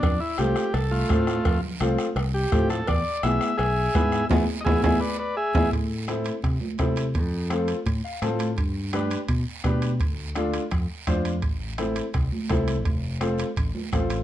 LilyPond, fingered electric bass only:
\new Staff \with { instrumentName = "Fingered electric bass" } { \clef bass \time 4/4 \key a \minor \tempo 4 = 168 f,8 r8 c,8 r8 c,4 a,4 | f,8 r8 c,8 r8 c,4 a,4 | e,8 r8 b,,8 r8 b,,4 gis,4 | e,8 r8 e,8 e,8 r4. e,8 |
a,2 c8 r8 c4 | f,2 a,8 r8 a,4 | g,2 b,8 r8 b,4 | d,2 f,8 r8 f,4 |
a,,2 c,8 r8 c,4 | f,,2 a,,8 r8 a,,4 | }